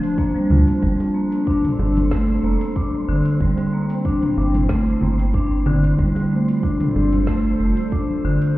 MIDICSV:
0, 0, Header, 1, 6, 480
1, 0, Start_track
1, 0, Tempo, 645161
1, 615, Time_signature, 4, 2, 24, 8
1, 6383, End_track
2, 0, Start_track
2, 0, Title_t, "Synth texture"
2, 0, Program_c, 0, 99
2, 0, Note_on_c, 0, 60, 87
2, 0, Note_on_c, 0, 72, 84
2, 6383, Note_off_c, 0, 60, 0
2, 6383, Note_off_c, 0, 72, 0
2, 6383, End_track
3, 0, Start_track
3, 0, Title_t, "Ambient pad"
3, 0, Program_c, 1, 92
3, 0, Note_on_c, 1, 62, 97
3, 0, Note_on_c, 1, 72, 68
3, 619, Note_on_c, 1, 55, 91
3, 768, Note_on_c, 1, 69, 94
3, 1383, Note_off_c, 1, 72, 0
3, 2537, Note_off_c, 1, 55, 0
3, 2537, Note_off_c, 1, 69, 0
3, 2538, Note_on_c, 1, 60, 75
3, 2647, Note_on_c, 1, 64, 79
3, 3309, Note_off_c, 1, 62, 0
3, 4456, Note_off_c, 1, 64, 0
3, 4460, Note_on_c, 1, 55, 81
3, 4711, Note_on_c, 1, 65, 73
3, 4782, Note_on_c, 1, 72, 86
3, 4831, Note_on_c, 1, 69, 84
3, 5109, Note_off_c, 1, 60, 0
3, 6377, Note_off_c, 1, 55, 0
3, 6377, Note_off_c, 1, 69, 0
3, 6383, Note_off_c, 1, 65, 0
3, 6383, Note_off_c, 1, 72, 0
3, 6383, End_track
4, 0, Start_track
4, 0, Title_t, "Marimba"
4, 0, Program_c, 2, 12
4, 138, Note_on_c, 2, 58, 100
4, 211, Note_off_c, 2, 58, 0
4, 265, Note_on_c, 2, 55, 95
4, 328, Note_off_c, 2, 55, 0
4, 377, Note_on_c, 2, 65, 71
4, 500, Note_off_c, 2, 65, 0
4, 614, Note_on_c, 2, 55, 77
4, 843, Note_off_c, 2, 55, 0
4, 853, Note_on_c, 2, 58, 72
4, 1083, Note_off_c, 2, 58, 0
4, 1094, Note_on_c, 2, 62, 93
4, 1323, Note_off_c, 2, 62, 0
4, 1332, Note_on_c, 2, 62, 75
4, 1407, Note_off_c, 2, 62, 0
4, 1573, Note_on_c, 2, 57, 103
4, 1803, Note_off_c, 2, 57, 0
4, 1817, Note_on_c, 2, 58, 78
4, 2045, Note_off_c, 2, 58, 0
4, 2056, Note_on_c, 2, 62, 85
4, 2130, Note_off_c, 2, 62, 0
4, 2296, Note_on_c, 2, 50, 106
4, 2370, Note_off_c, 2, 50, 0
4, 2541, Note_on_c, 2, 55, 80
4, 2767, Note_off_c, 2, 55, 0
4, 2778, Note_on_c, 2, 58, 74
4, 3005, Note_off_c, 2, 58, 0
4, 3019, Note_on_c, 2, 62, 97
4, 3246, Note_off_c, 2, 62, 0
4, 3258, Note_on_c, 2, 62, 77
4, 3331, Note_off_c, 2, 62, 0
4, 3494, Note_on_c, 2, 57, 105
4, 3723, Note_off_c, 2, 57, 0
4, 3740, Note_on_c, 2, 58, 77
4, 3966, Note_off_c, 2, 58, 0
4, 3977, Note_on_c, 2, 62, 90
4, 4050, Note_off_c, 2, 62, 0
4, 4217, Note_on_c, 2, 50, 108
4, 4290, Note_off_c, 2, 50, 0
4, 4457, Note_on_c, 2, 55, 87
4, 4685, Note_off_c, 2, 55, 0
4, 4700, Note_on_c, 2, 57, 76
4, 4926, Note_off_c, 2, 57, 0
4, 4937, Note_on_c, 2, 62, 92
4, 5165, Note_off_c, 2, 62, 0
4, 5174, Note_on_c, 2, 62, 75
4, 5248, Note_off_c, 2, 62, 0
4, 5417, Note_on_c, 2, 57, 102
4, 5645, Note_off_c, 2, 57, 0
4, 5654, Note_on_c, 2, 57, 76
4, 5883, Note_off_c, 2, 57, 0
4, 5896, Note_on_c, 2, 62, 85
4, 5970, Note_off_c, 2, 62, 0
4, 6136, Note_on_c, 2, 50, 99
4, 6210, Note_off_c, 2, 50, 0
4, 6383, End_track
5, 0, Start_track
5, 0, Title_t, "Sub bass"
5, 0, Program_c, 3, 38
5, 371, Note_on_c, 3, 38, 93
5, 475, Note_off_c, 3, 38, 0
5, 614, Note_on_c, 3, 31, 99
5, 716, Note_off_c, 3, 31, 0
5, 1328, Note_on_c, 3, 31, 88
5, 1773, Note_off_c, 3, 31, 0
5, 1807, Note_on_c, 3, 29, 94
5, 1913, Note_off_c, 3, 29, 0
5, 2291, Note_on_c, 3, 31, 98
5, 2395, Note_off_c, 3, 31, 0
5, 2532, Note_on_c, 3, 31, 100
5, 2636, Note_off_c, 3, 31, 0
5, 3251, Note_on_c, 3, 31, 82
5, 3489, Note_off_c, 3, 31, 0
5, 3493, Note_on_c, 3, 31, 92
5, 3687, Note_off_c, 3, 31, 0
5, 3731, Note_on_c, 3, 31, 109
5, 4415, Note_off_c, 3, 31, 0
5, 4454, Note_on_c, 3, 31, 105
5, 4557, Note_off_c, 3, 31, 0
5, 5172, Note_on_c, 3, 31, 84
5, 5616, Note_off_c, 3, 31, 0
5, 5651, Note_on_c, 3, 29, 103
5, 5755, Note_off_c, 3, 29, 0
5, 6130, Note_on_c, 3, 31, 95
5, 6235, Note_off_c, 3, 31, 0
5, 6383, End_track
6, 0, Start_track
6, 0, Title_t, "Drums"
6, 26, Note_on_c, 9, 46, 52
6, 31, Note_on_c, 9, 69, 69
6, 100, Note_off_c, 9, 46, 0
6, 106, Note_off_c, 9, 69, 0
6, 134, Note_on_c, 9, 36, 113
6, 140, Note_on_c, 9, 69, 56
6, 209, Note_off_c, 9, 36, 0
6, 215, Note_off_c, 9, 69, 0
6, 271, Note_on_c, 9, 69, 32
6, 345, Note_off_c, 9, 69, 0
6, 374, Note_on_c, 9, 45, 77
6, 380, Note_on_c, 9, 64, 97
6, 448, Note_off_c, 9, 45, 0
6, 455, Note_off_c, 9, 64, 0
6, 505, Note_on_c, 9, 46, 52
6, 510, Note_on_c, 9, 69, 68
6, 579, Note_off_c, 9, 46, 0
6, 584, Note_off_c, 9, 69, 0
6, 614, Note_on_c, 9, 36, 104
6, 619, Note_on_c, 9, 63, 36
6, 620, Note_on_c, 9, 69, 59
6, 688, Note_off_c, 9, 36, 0
6, 693, Note_off_c, 9, 63, 0
6, 695, Note_off_c, 9, 69, 0
6, 745, Note_on_c, 9, 60, 48
6, 746, Note_on_c, 9, 46, 44
6, 751, Note_on_c, 9, 69, 33
6, 819, Note_off_c, 9, 60, 0
6, 820, Note_off_c, 9, 46, 0
6, 825, Note_off_c, 9, 69, 0
6, 984, Note_on_c, 9, 46, 53
6, 989, Note_on_c, 9, 69, 63
6, 1059, Note_off_c, 9, 46, 0
6, 1064, Note_off_c, 9, 69, 0
6, 1094, Note_on_c, 9, 36, 106
6, 1101, Note_on_c, 9, 69, 54
6, 1168, Note_off_c, 9, 36, 0
6, 1176, Note_off_c, 9, 69, 0
6, 1223, Note_on_c, 9, 63, 61
6, 1225, Note_on_c, 9, 45, 76
6, 1225, Note_on_c, 9, 46, 44
6, 1230, Note_on_c, 9, 69, 33
6, 1297, Note_off_c, 9, 63, 0
6, 1300, Note_off_c, 9, 45, 0
6, 1300, Note_off_c, 9, 46, 0
6, 1305, Note_off_c, 9, 69, 0
6, 1335, Note_on_c, 9, 60, 51
6, 1410, Note_off_c, 9, 60, 0
6, 1466, Note_on_c, 9, 46, 53
6, 1469, Note_on_c, 9, 63, 83
6, 1471, Note_on_c, 9, 69, 69
6, 1540, Note_off_c, 9, 46, 0
6, 1544, Note_off_c, 9, 63, 0
6, 1545, Note_off_c, 9, 69, 0
6, 1573, Note_on_c, 9, 38, 72
6, 1574, Note_on_c, 9, 36, 102
6, 1647, Note_off_c, 9, 38, 0
6, 1648, Note_off_c, 9, 36, 0
6, 1708, Note_on_c, 9, 69, 33
6, 1782, Note_off_c, 9, 69, 0
6, 1943, Note_on_c, 9, 46, 57
6, 1948, Note_on_c, 9, 69, 66
6, 2018, Note_off_c, 9, 46, 0
6, 2023, Note_off_c, 9, 69, 0
6, 2053, Note_on_c, 9, 36, 111
6, 2056, Note_on_c, 9, 69, 57
6, 2127, Note_off_c, 9, 36, 0
6, 2130, Note_off_c, 9, 69, 0
6, 2185, Note_on_c, 9, 63, 55
6, 2190, Note_on_c, 9, 69, 33
6, 2259, Note_off_c, 9, 63, 0
6, 2264, Note_off_c, 9, 69, 0
6, 2421, Note_on_c, 9, 46, 53
6, 2426, Note_on_c, 9, 69, 64
6, 2495, Note_off_c, 9, 46, 0
6, 2501, Note_off_c, 9, 69, 0
6, 2533, Note_on_c, 9, 36, 103
6, 2537, Note_on_c, 9, 69, 54
6, 2608, Note_off_c, 9, 36, 0
6, 2612, Note_off_c, 9, 69, 0
6, 2659, Note_on_c, 9, 60, 52
6, 2662, Note_on_c, 9, 46, 47
6, 2667, Note_on_c, 9, 69, 34
6, 2734, Note_off_c, 9, 60, 0
6, 2736, Note_off_c, 9, 46, 0
6, 2741, Note_off_c, 9, 69, 0
6, 2902, Note_on_c, 9, 46, 57
6, 2907, Note_on_c, 9, 69, 70
6, 2976, Note_off_c, 9, 46, 0
6, 2981, Note_off_c, 9, 69, 0
6, 3013, Note_on_c, 9, 36, 103
6, 3016, Note_on_c, 9, 69, 53
6, 3088, Note_off_c, 9, 36, 0
6, 3090, Note_off_c, 9, 69, 0
6, 3142, Note_on_c, 9, 45, 77
6, 3142, Note_on_c, 9, 46, 40
6, 3146, Note_on_c, 9, 63, 65
6, 3147, Note_on_c, 9, 69, 31
6, 3216, Note_off_c, 9, 45, 0
6, 3216, Note_off_c, 9, 46, 0
6, 3220, Note_off_c, 9, 63, 0
6, 3221, Note_off_c, 9, 69, 0
6, 3253, Note_on_c, 9, 60, 46
6, 3328, Note_off_c, 9, 60, 0
6, 3381, Note_on_c, 9, 45, 64
6, 3381, Note_on_c, 9, 46, 55
6, 3385, Note_on_c, 9, 63, 73
6, 3386, Note_on_c, 9, 69, 64
6, 3456, Note_off_c, 9, 45, 0
6, 3456, Note_off_c, 9, 46, 0
6, 3459, Note_off_c, 9, 63, 0
6, 3461, Note_off_c, 9, 69, 0
6, 3491, Note_on_c, 9, 38, 68
6, 3494, Note_on_c, 9, 36, 101
6, 3566, Note_off_c, 9, 38, 0
6, 3568, Note_off_c, 9, 36, 0
6, 3628, Note_on_c, 9, 69, 31
6, 3703, Note_off_c, 9, 69, 0
6, 3730, Note_on_c, 9, 64, 78
6, 3804, Note_off_c, 9, 64, 0
6, 3864, Note_on_c, 9, 46, 55
6, 3869, Note_on_c, 9, 69, 65
6, 3938, Note_off_c, 9, 46, 0
6, 3943, Note_off_c, 9, 69, 0
6, 3973, Note_on_c, 9, 36, 102
6, 3979, Note_on_c, 9, 69, 54
6, 4048, Note_off_c, 9, 36, 0
6, 4053, Note_off_c, 9, 69, 0
6, 4112, Note_on_c, 9, 69, 33
6, 4186, Note_off_c, 9, 69, 0
6, 4210, Note_on_c, 9, 64, 102
6, 4214, Note_on_c, 9, 45, 82
6, 4284, Note_off_c, 9, 64, 0
6, 4289, Note_off_c, 9, 45, 0
6, 4345, Note_on_c, 9, 46, 59
6, 4351, Note_on_c, 9, 69, 65
6, 4420, Note_off_c, 9, 46, 0
6, 4425, Note_off_c, 9, 69, 0
6, 4454, Note_on_c, 9, 36, 105
6, 4457, Note_on_c, 9, 69, 56
6, 4458, Note_on_c, 9, 63, 35
6, 4529, Note_off_c, 9, 36, 0
6, 4531, Note_off_c, 9, 69, 0
6, 4533, Note_off_c, 9, 63, 0
6, 4584, Note_on_c, 9, 60, 55
6, 4585, Note_on_c, 9, 46, 46
6, 4590, Note_on_c, 9, 69, 33
6, 4659, Note_off_c, 9, 46, 0
6, 4659, Note_off_c, 9, 60, 0
6, 4664, Note_off_c, 9, 69, 0
6, 4825, Note_on_c, 9, 46, 60
6, 4830, Note_on_c, 9, 69, 66
6, 4899, Note_off_c, 9, 46, 0
6, 4904, Note_off_c, 9, 69, 0
6, 4934, Note_on_c, 9, 36, 99
6, 4938, Note_on_c, 9, 69, 55
6, 5008, Note_off_c, 9, 36, 0
6, 5012, Note_off_c, 9, 69, 0
6, 5062, Note_on_c, 9, 45, 85
6, 5062, Note_on_c, 9, 46, 45
6, 5064, Note_on_c, 9, 63, 62
6, 5067, Note_on_c, 9, 69, 29
6, 5137, Note_off_c, 9, 45, 0
6, 5137, Note_off_c, 9, 46, 0
6, 5139, Note_off_c, 9, 63, 0
6, 5142, Note_off_c, 9, 69, 0
6, 5177, Note_on_c, 9, 60, 48
6, 5251, Note_off_c, 9, 60, 0
6, 5302, Note_on_c, 9, 46, 57
6, 5305, Note_on_c, 9, 63, 82
6, 5307, Note_on_c, 9, 69, 64
6, 5376, Note_off_c, 9, 46, 0
6, 5379, Note_off_c, 9, 63, 0
6, 5381, Note_off_c, 9, 69, 0
6, 5410, Note_on_c, 9, 38, 71
6, 5413, Note_on_c, 9, 36, 95
6, 5484, Note_off_c, 9, 38, 0
6, 5488, Note_off_c, 9, 36, 0
6, 5546, Note_on_c, 9, 69, 32
6, 5620, Note_off_c, 9, 69, 0
6, 5781, Note_on_c, 9, 46, 55
6, 5787, Note_on_c, 9, 69, 66
6, 5856, Note_off_c, 9, 46, 0
6, 5861, Note_off_c, 9, 69, 0
6, 5893, Note_on_c, 9, 36, 105
6, 5897, Note_on_c, 9, 69, 50
6, 5968, Note_off_c, 9, 36, 0
6, 5971, Note_off_c, 9, 69, 0
6, 6026, Note_on_c, 9, 63, 57
6, 6028, Note_on_c, 9, 69, 30
6, 6100, Note_off_c, 9, 63, 0
6, 6102, Note_off_c, 9, 69, 0
6, 6263, Note_on_c, 9, 46, 58
6, 6268, Note_on_c, 9, 69, 61
6, 6337, Note_off_c, 9, 46, 0
6, 6343, Note_off_c, 9, 69, 0
6, 6383, End_track
0, 0, End_of_file